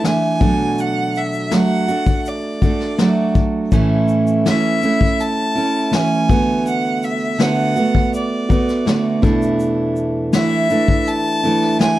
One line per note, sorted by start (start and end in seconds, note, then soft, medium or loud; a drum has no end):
0.03 0.41 E3 medium
0.03 0.41 A3 medium
0.03 0.40 D4 medium
0.03 0.40 E4 medium
0.03 snare loud
0.03 shaker medium
0.07 0.82 G#5 loud
0.40 1.52 B2 medium
0.40 1.50 F#3 medium
0.40 1.52 A3 medium
0.40 1.52 D4 medium
0.40 1.51 F#4 medium
0.40 kick loud
0.40 shaker soft
0.78 1.19 F#5 loud
0.78 shaker medium
1.15 1.56 E5 medium
1.15 shaker soft
1.33 shaker medium
1.51 1.88 F#3 medium
1.51 1.89 A3 medium
1.51 1.89 D4 medium
1.51 1.87 F#4 medium
1.51 2.29 F#5 loud
1.51 snare loud
1.51 shaker medium
1.88 2.64 A3 soft
1.88 2.62 D4 medium
1.88 2.60 F#4 medium
1.88 shaker medium
2.06 kick medium
2.06 shaker medium
2.25 3.37 D5 medium
2.25 shaker medium
2.62 2.99 A3 soft
2.62 2.99 D4 medium
2.62 2.99 F#4 medium
2.62 kick medium
2.62 shaker soft
2.80 snare soft
2.98 3.72 F#3 medium
2.98 3.72 A3 medium
2.98 3.73 D4 medium
2.98 3.73 F#4 medium
2.98 snare loud
2.98 shaker medium
3.35 kick medium
3.35 shaker soft
3.72 4.46 A2 medium
3.72 4.44 E3 loud
3.72 4.46 A3 medium
3.72 4.46 C#4 medium
3.72 4.47 E4 medium
3.72 kick loud
3.72 shaker medium
4.08 shaker medium
4.27 shaker soft
4.45 4.82 E3 medium
4.45 4.83 A3 medium
4.45 4.82 C#4 medium
4.45 4.80 E4 medium
4.45 5.22 E5 loud
4.45 snare loud
4.45 shaker medium
4.82 5.58 A3 soft
4.82 5.56 C#4 medium
4.82 5.54 E4 medium
4.82 shaker medium
5.01 kick medium
5.20 5.96 A5 loud
5.20 shaker medium
5.55 5.91 A3 soft
5.55 5.92 C#4 medium
5.55 5.92 E4 medium
5.55 shaker soft
5.91 6.29 E3 medium
5.91 6.29 A3 medium
5.91 6.30 C#4 medium
5.91 6.29 E4 medium
5.91 6.67 G#5 loud
5.91 snare loud
5.91 shaker medium
6.29 7.38 D3 medium
6.29 7.39 A3 medium
6.29 7.40 B3 medium
6.29 7.40 F#4 medium
6.29 kick loud
6.29 shaker soft
6.66 7.06 F#5 loud
6.66 shaker medium
7.03 7.43 E5 medium
7.03 shaker soft
7.38 7.76 D3 medium
7.38 7.76 A3 medium
7.38 7.76 B3 medium
7.38 7.74 F#4 medium
7.38 8.14 F#5 medium
7.38 snare loud
7.38 shaker medium
7.76 8.52 A3 soft
7.76 8.51 B3 soft
7.76 8.48 F#4 soft
7.76 shaker medium
7.95 kick medium
8.14 9.20 D5 medium
8.14 shaker medium
8.49 8.85 A3 soft
8.49 8.86 B3 medium
8.49 8.86 F#4 medium
8.49 kick medium
8.49 shaker soft
8.68 snare soft
8.68 shaker soft
8.85 9.23 D3 medium
8.85 9.22 A3 medium
8.85 9.23 B3 medium
8.85 9.22 F#4 medium
8.85 snare loud
8.85 shaker medium
9.22 10.34 E2 medium
9.22 10.34 B2 medium
9.22 10.31 E3 medium
9.22 10.33 A3 medium
9.22 10.34 D4 medium
9.22 10.33 E4 medium
9.22 kick loud
9.22 shaker soft
9.42 shaker medium
9.60 shaker medium
9.96 shaker soft
10.33 10.70 E3 medium
10.33 10.70 A3 medium
10.33 10.70 D4 medium
10.33 10.69 E4 medium
10.33 11.09 E5 loud
10.33 snare loud
10.33 shaker medium
10.70 11.45 E3 soft
10.70 11.45 A3 medium
10.70 11.44 D4 medium
10.70 11.42 E4 medium
10.70 shaker medium
10.88 kick medium
11.07 11.81 A5 loud
11.07 shaker medium
11.43 11.78 E3 soft
11.43 11.79 A3 medium
11.43 11.80 D4 medium
11.43 11.80 E4 medium
11.43 shaker soft
11.62 snare soft
11.79 11.99 E3 medium
11.79 11.99 A3 medium
11.79 11.99 D4 medium
11.79 11.99 E4 medium
11.79 11.99 G#5 loud
11.79 snare loud
11.79 shaker medium